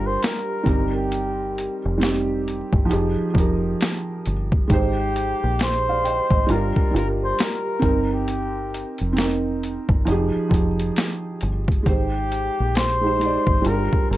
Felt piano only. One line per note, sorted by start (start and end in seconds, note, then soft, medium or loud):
0.00 0.64 G3 medium
0.00 0.69 D4 medium
0.00 0.68 F4 medium
0.00 0.68 A#4 medium
0.64 1.77 G3 medium
0.64 1.78 C4 medium
0.64 1.79 D#4 medium
0.69 1.79 A#4 medium
1.98 2.89 G3 medium
1.98 2.90 C4 medium
1.98 2.86 D#4 medium
2.03 2.88 G4 medium
2.85 3.26 F3 medium
2.85 3.27 D#4 medium
2.85 3.28 G4 medium
2.91 3.29 G#4 medium
3.34 4.31 F3 medium
3.34 4.31 D#4 medium
3.34 4.32 G4 medium
3.39 4.33 A#4 medium
4.68 5.36 G#3 medium
4.68 5.37 D#4 medium
4.72 5.38 G4 medium
4.72 5.16 C5 loud
5.89 6.04 D5 medium
5.89 6.04 F5 medium
6.04 6.31 D#5 medium
6.04 6.30 G5 medium
6.32 6.75 C5 medium
6.32 6.75 D#5 medium
6.47 6.86 G3 medium
6.47 6.86 D4 medium
6.47 6.87 F4 medium
6.52 6.88 A#4 medium
6.91 7.82 G3 medium
6.91 7.83 D4 medium
6.91 7.84 F4 medium
6.96 7.84 A#4 medium
7.79 8.93 C4 medium
7.79 8.95 D#4 medium
7.85 8.96 A#4 medium
9.13 10.05 C4 medium
9.13 10.06 D#4 medium
9.18 10.07 A#4 medium
10.05 10.44 F3 medium
10.05 10.45 D#4 medium
10.05 10.46 G4 medium
10.11 10.47 G#4 loud
10.49 11.46 F3 medium
10.49 11.47 D#4 medium
10.49 11.48 G4 medium
10.54 11.49 G#4 medium
11.83 12.66 G#3 medium
11.83 12.67 D#4 medium
11.83 12.68 G4 medium
11.88 12.69 C5 medium
13.01 13.14 G#3 medium
13.01 13.15 D#4 medium
13.01 13.16 G4 medium
13.06 13.17 C5 medium
13.19 13.65 G#3 medium
13.19 13.66 D#4 medium
13.19 13.67 G4 medium
13.25 13.68 D5 medium
13.62 14.17 G3 medium
13.62 14.17 D4 medium
13.62 14.17 F4 medium
13.67 13.74 G#4 medium
13.74 14.17 A#4 medium